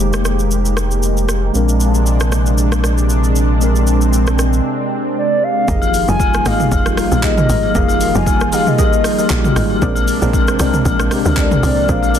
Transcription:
Already playing: F1 D#3 G#3 A#3 D#4 G4 C5
0.13 cross-stick, shaker
0.25 cross-stick, shaker
0.39 shaker
0.51 shaker
0.65 shaker
0.77 cross-stick, shaker
0.91 shaker
1.03 shaker
1.17 shaker
1.29 cross-stick, shaker
1.53 A#1 C3 G#3 C4 D4 A#4, shaker
1.69 shaker
1.80 shaker
1.95 shaker
2.06 shaker
2.20 cross-stick, shaker
2.32 cross-stick, shaker
2.46 shaker
2.58 shaker
2.72 cross-stick, shaker
2.84 cross-stick, shaker
2.98 shaker
3.10 shaker
3.24 shaker
3.36 shaker
3.60 G#3 C4 D4 A#4, shaker
3.76 shaker
3.87 shaker
4.01 shaker
4.13 shaker
4.27 cross-stick, shaker
4.39 cross-stick, shaker
4.53 shaker
5.18 D5
5.43 F5
5.68 F1 D#3 F3 A#3 D#4 F4 G4 G#4 A#4 D#5, kick, shaker
5.82 high agogo, shaker
5.94 open hi-hat, shaker
6.08 F1 G3 A#3 D#4 F4 G4 G#4 A#4 D#5 G#5, shaker
6.20 kick, high agogo, shaker
6.34 cross-stick, shaker
6.45 G#1 A#3 D#4 G4 G#4 A#4 D#5 F5, cross-stick, open hi-hat, high agogo, shaker
6.60 mid tom, shaker
6.72 F1 F5, kick, high agogo, shaker
6.86 cross-stick, shaker
6.97 G3 A#3 D#4 F4, cross-stick, open hi-hat, shaker
7.12 A#1, high agogo, shaker
7.23 A#3 D#4 G4 G#4 D#5, kick, clap, shaker
7.38 mid tom, high agogo, shaker
7.49 G#1 G4 G#4 A#4 D#5, open hi-hat, shaker
7.63 high agogo
7.75 F1 A#3 D#4 F4 G4 G#4 A#4 D#5 F5, kick, shaker
7.88 high agogo, shaker
8.01 open hi-hat, shaker
8.15 F1 G3 A#3 D#4 F4 G4 G#4 A#4 D#5 G#5, shaker
8.27 kick, high agogo, shaker
8.41 cross-stick, shaker
8.52 A#3 D#4 G4 G#4 A#4 D#5 F5, open hi-hat, high agogo, shaker
8.67 D#5, mid tom, shaker
8.78 G4 G#4 A#4 D#5, kick, high agogo, shaker
8.93 shaker
9.04 G3 A#3 D#4 G#4, cross-stick, open hi-hat, shaker
9.18 G4 G#4 A#4 D#5, high agogo, shaker
9.30 A#1 G3 A#3 D#4 F#4, kick, clap, shaker
9.38 G4
9.44 mid tom, high agogo, shaker
9.56 G#1 G4 G#4 A#4 D#5, cross-stick, open hi-hat, shaker
9.70 high agogo
9.81 A#1 C3 F3 G#3 A#3 C4 D4 G#4 A#4 C5 D5, kick, shaker
9.95 high agogo, shaker
10.08 open hi-hat, shaker
10.22 A#1 G#3 C4 D4 G#4 A#4 C5 D5, shaker
10.33 kick, high agogo, shaker
10.48 cross-stick, shaker
10.59 C2 G#3 C4 D4 G#4 A#4 C5 D5, cross-stick, open hi-hat, high agogo, shaker
10.74 mid tom, shaker
10.85 A#1, kick, high agogo, shaker
11.00 cross-stick, shaker
11.11 G#3 C4 D4 G4, cross-stick, open hi-hat, shaker
11.25 D2, high agogo, shaker
11.37 G#3 C4 D4 A4 D5, kick, clap, shaker
11.45 A#4
11.51 mid tom, high agogo, shaker
11.63 C2 G#4 C5 D5, open hi-hat, shaker
11.77 high agogo
11.89 A#1 G#3 C4 D4 G#4 A#4 C5 D5 F5, kick, shaker
12.03 high agogo, shaker
12.15 D5, open hi-hat, shaker

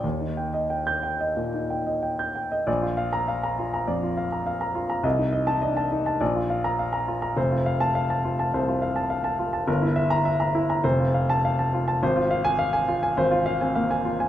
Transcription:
0.04 D#2
0.20 D#4
0.37 G5
0.54 D#5
0.70 G5
0.87 G6
1.03 G5
1.21 D#5
1.37 A#2
1.54 D#4
1.70 G5
1.87 D#5
2.03 G5
2.19 G6
2.35 G5
2.52 D#5
2.67 A#1 D5
2.82 F4
2.97 F5
3.13 A#5
3.28 F5
3.43 A#5
3.59 F4
3.74 A#5
3.87 F2 D5
4.03 F4
4.17 F5
4.32 A#5
4.47 F5
4.61 A#5
4.75 F4
4.90 A#5
5.03 C2 D#5
5.18 D#4
5.33 D#5
5.47 D#4 A5
5.62 D4 D#5
5.77 A5
5.92 D#4
6.06 A5
6.21 A#1 D5
6.35 F4
6.50 F5
6.64 A#5
6.79 F5
6.93 A#5
7.08 F4
7.22 A#5
7.37 F1 C5
7.51 F4
7.66 F5
7.80 A5
7.95 F5
8.10 A5
8.25 F4
8.39 A5
8.54 C2 C5
8.68 F4
8.82 F5
8.96 A5
9.10 F5
9.24 A5
9.39 F4
9.53 A5
9.68 G1 A#4
9.82 E4
9.96 E5
10.10 A#5
10.25 E5
10.40 A#5
10.55 E4
10.70 A#5
10.84 F1 C5
11.00 F4
11.14 F5
11.30 A5
11.45 F5
11.59 A5
11.74 F4
11.88 A5
12.03 G#1 C5
12.16 F4
12.31 F5
12.45 G#5
12.59 F5
12.73 G#5
12.88 F4
13.03 G#5
13.17 G#1 C5
13.31 F4
13.46 F5
13.61 C4 G#5
13.75 A#3 F5
13.91 G#5
14.05 F4
14.20 G#5

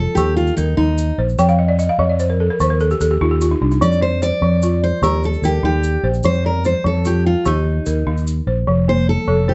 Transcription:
Already playing: F4 A4
0.15 D#2 D#3 G4, shaker
0.36 F4, shaker
0.47 shaker
0.57 D#2 D#4 A#4, shaker
0.77 D#2 D#4
0.98 shaker
1.18 A#1 C5
1.29 shaker
1.38 F2 F3 G5, shaker
1.49 F5, shaker
1.59 D#5
1.68 D5
1.79 D#5, shaker
1.89 F5
1.99 F2 F3 D#5
2.10 D5
2.20 C5, shaker
2.30 A#4
2.40 A4
2.50 A#4
2.60 D#2 D#3 C5, shaker
2.70 A#4
2.80 A4, shaker
2.91 G4, shaker
3.01 D#2 A4, shaker
3.11 G4
3.21 D#2 D#4 F4
3.31 G4
3.41 F4, shaker
3.51 D#4
3.61 C2 D4
3.71 D#4, shaker
3.81 F2 F3 D5, shaker
3.92 shaker
4.01 C5 D5
4.22 C5 D5, shaker
4.42 F2 F3
4.62 F4, shaker
4.84 C5
5.02 D#2 D#3 G4 A#4, shaker
5.23 A4, shaker
5.33 shaker
5.42 D#2 G4 A#4, shaker
5.63 D#2 D#4 G4
5.84 shaker
6.04 A#1 C5
6.14 shaker
6.23 F2 F3 C5, shaker
6.34 shaker
6.45 A#4 D5
6.65 C5, shaker
6.85 F2 F3 A4
7.05 F4 G4, shaker
7.26 F4
7.45 D#2 D#3 D#4 G4, shaker
7.86 D#2 A#4, shaker
8.07 D#2 D#4
8.17 shaker
8.27 shaker
8.47 A#1 C5
8.67 F1 F3
8.88 A#3 C5
9.09 A4
9.28 F1 F3 A4
9.48 G4 C5

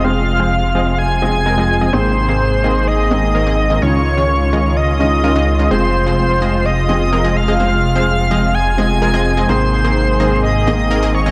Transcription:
Already playing: F1 C3 G#3 C4 F4 G#4
0.03 F3 G#3 C4 F4 G#4 C5 F5
0.40 F3 G#3 C4 G#4 C5
0.75 F3 G#3 C4 G#4 D#5
0.99 G#5
1.21 F3 G#3 C4 F4 G#4 D#5
1.46 F3 G#3 C4 G#4 A#4
1.58 F3 G#3 C4 G#4 D#5
1.81 F3 G#3 C4 G#4 D#5
1.92 G#1 G#2 D#3 A#3 C4 D#4 G#4 C5
2.29 D#3 A#3 C4 G#4 C5
2.64 D#3 A#3 C4 G#4 D#5
2.87 D#5
3.10 G#2 D#3 A#3 C4 D#4 G#4 D#5
3.35 D#3 A#3 C4 G#4 A#4
3.47 D#3 A#3 C4 G#4 D#5
3.70 D#3 A#3 C4 G#4 D#5
3.81 C#2 C#3 D#3 G#3 C#4 D#4 F4 C#5
4.17 D#3 G#3 C#4 F4 C#5
4.53 D#3 G#3 C#4 F4 D#5
4.76 D#5
4.99 C#3 D#3 G#3 C#4 D#4 F4 D#5
5.24 D#3 G#3 C#4 F4 A#4
5.36 D#3 G#3 C#4 F4 D#5
5.59 D#3 G#3 C#4 F4 D#5
5.70 F1 C3 F3 G#3 C4 F4 G#4 C5
6.06 F3 G#3 C4 G#4 C5
6.42 F3 G#3 C4 G#4 D#5
6.66 D#5
6.88 F3 G#3 C4 F4 G#4 D#5
7.13 F3 G#3 C4 G#4 A#4
7.24 F3 G#3 C4 G#4 D#5
7.36 F5
7.48 F3 G#3 C4 G#4 D#5
7.59 F3 G#3 C4 F4 G#4 C5
7.95 F3 G#3 C4 G#4 C5
8.31 F3 G#3 C4 G#4 D#5
8.55 G#5
8.77 F3 G#3 C4 F4 G#4 D#5
9.02 F3 G#3 C4 G#4 A#4
9.14 F3 G#3 C4 G#4 D#5
9.37 F3 G#3 C4 G#4 D#5
9.48 G#1 G#2 D#3 A#3 C4 D#4 G#4 C5
9.85 D#3 A#3 C4 G#4 C5
10.20 D#3 A#3 C4 G#4 D#5
10.43 D#5
10.66 G#2 D#3 A#3 C4 D#4 G#4 D#5
10.91 D#3 A#3 C4 G#4 A#4
11.03 D#3 A#3 C4 G#4 D#5
11.14 C#5
11.26 D#3 A#3 C4 G#4 D#5

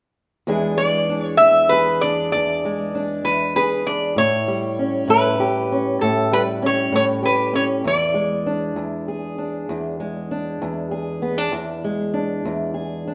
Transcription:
0.47 E2 E3 G#3 D4 G#4
0.78 G#3 D5
1.09 D4
1.23 C#5
1.37 E2 E5
1.69 G#4 B4
2.01 D4 D5
2.32 E2 D5
2.65 G#3
2.95 D4
3.24 E2 B4
3.56 G#4 B4
3.86 D4 D5
4.16 A2 C#5
4.48 G3
4.79 C#4
5.08 A2 B4
5.40 G4
5.72 C#4
6.01 A2 A4
6.32 G3 B4
6.62 C#4 C#5
6.92 A2 C#5
7.23 G4 B4
7.53 C#4 C#5
7.84 E2 D5
8.14 G#3
8.46 D4
8.76 E2
9.08 G#4
9.38 D4
9.69 E2
10.00 G#3
10.31 D4
10.62 E2
10.91 G#4
11.22 B3
11.38 D4
11.52 E2
11.84 G#3
12.14 D4
12.45 E2
12.74 G#4
13.07 D4

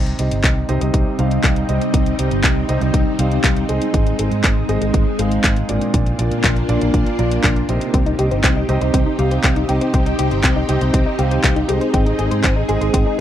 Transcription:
Already playing: C2 C3 G3 C4 D#4 G4 C5 D#5
0.06 closed hi-hat
0.19 C2 C3 D#4 G4 C5 D#5, closed hi-hat
0.31 G1, closed hi-hat
0.44 C2, kick, clap, closed hi-hat
0.69 C2 C3 D#4 G4 C5 D#5, closed hi-hat
0.81 C2 C3 D#4 G4 C5 D#5, closed hi-hat
0.94 C2, kick, closed hi-hat
1.19 C2 C3 D#4 G4 C5 F5, closed hi-hat
1.31 closed hi-hat
1.44 C2, kick, clap, closed hi-hat
1.56 closed hi-hat
1.69 C2 C3 D#4 G4 C5 D#5, closed hi-hat
1.81 closed hi-hat
1.94 C2, kick, closed hi-hat
2.06 closed hi-hat
2.19 C2 C3 D#4 G4 C5 D#5, closed hi-hat
2.31 G1, closed hi-hat
2.44 C2, kick, clap, closed hi-hat
2.69 C2 C3 D#4 G4 C5 D#5, closed hi-hat
2.81 C2 C3 D#4 G4 C5 D#5, closed hi-hat
2.94 C2, kick, closed hi-hat
3.19 C2 C3 D#4 G4 C5 F5, closed hi-hat
3.31 closed hi-hat
3.44 C2, kick, clap, closed hi-hat
3.56 closed hi-hat
3.69 C2 G#3 D#4 G#4 C5 D#5, closed hi-hat
3.82 closed hi-hat
3.94 G#1 G#3, kick, closed hi-hat
4.07 closed hi-hat
4.19 G#1 G#3 D#4 G#4 C5 D#5, closed hi-hat
4.32 G#2, closed hi-hat
4.44 G#1, kick, clap, closed hi-hat
4.69 G#1 G#3 D#4 G#4 C5 D#5, closed hi-hat
4.81 G#1 G#3 D#4 G#4 C5 D#5, closed hi-hat
4.94 G#1, kick, closed hi-hat
5.19 G#1 G#3 D#4 G#4 C5 F5, closed hi-hat
5.31 closed hi-hat
5.44 G#1, kick, clap, closed hi-hat
5.57 closed hi-hat
5.69 G#1 A#2 D4 F4 A#4 D5, closed hi-hat
5.81 closed hi-hat
5.94 A#1 A#3 D4 F4, kick, closed hi-hat
6.06 closed hi-hat
6.19 A#1 A#2 D4 F4 A#4 D5, closed hi-hat
6.31 A#2, closed hi-hat
6.44 A#1, kick, clap, closed hi-hat
6.56 closed hi-hat
6.69 A#1 A#2 D4 F4 A#4 D5, closed hi-hat
6.81 A#1 A#2 D4 F4 A#4 D5, closed hi-hat
6.94 A#1, kick, closed hi-hat
7.06 closed hi-hat
7.19 A#1 A#2 D4 F4 A#4 D5, closed hi-hat
7.31 closed hi-hat
7.44 A#1, kick, clap, closed hi-hat
7.56 closed hi-hat
7.69 A#1 C3 D#4 G4 C5 D#5, closed hi-hat
7.81 closed hi-hat
7.94 C2 C4 D#4 G4, kick, closed hi-hat
8.06 D#4, closed hi-hat
8.19 C2 C3 D#4 G4 C5 D#5, closed hi-hat
8.31 G1 C5, closed hi-hat
8.44 C2 C4, kick, clap, closed hi-hat
8.56 D#4
8.69 C2 C3 D#4 G4 C5 D#5, closed hi-hat
8.81 C2 C3 D#4 G4 C5 D#5, closed hi-hat
8.94 C2 C4, kick, closed hi-hat
9.06 D#4
9.19 C2 C3 D#4 G4 C5 F5, closed hi-hat
9.31 C5, closed hi-hat
9.44 C2 C4, kick, clap, closed hi-hat
9.56 D#4, closed hi-hat
9.69 C2 C3 D#4 G4 C5 D#5, closed hi-hat
9.81 C5, closed hi-hat
9.94 C2 C4, kick, closed hi-hat
10.06 D#4, closed hi-hat
10.19 C2 C3 D#4 G4 C5 D#5, closed hi-hat
10.31 G1 C5, closed hi-hat
10.44 C2 C4, kick, clap, closed hi-hat
10.56 D#4
10.69 C2 C3 D#4 G4 C5 D#5, closed hi-hat
10.81 C2 C3 D#4 G4 C5 D#5, closed hi-hat
10.94 C2 C4, kick, closed hi-hat
11.06 D#4
11.19 C2 C3 D#4 G4 C5 F5, closed hi-hat
11.31 C5, closed hi-hat
11.44 C2 C4, kick, clap, closed hi-hat
11.56 D#4, closed hi-hat
11.69 C2 G#3 D#4 G4 G#4 C5 D#5, closed hi-hat
11.81 C5, closed hi-hat
11.94 G#1 C4 G#4, kick, closed hi-hat
12.06 D#4, closed hi-hat
12.19 G#1 G#3 D#4 G#4 C5 D#5, closed hi-hat
12.31 G#2 C5, closed hi-hat
12.44 G#1 C4, kick, clap, closed hi-hat
12.56 D#4
12.69 G#1 G#3 D#4 G#4 C5 D#5, closed hi-hat
12.81 G#1 G#3 D#4 G#4 C5 D#5, closed hi-hat
12.94 G#1 C4, kick, closed hi-hat
13.06 D#4

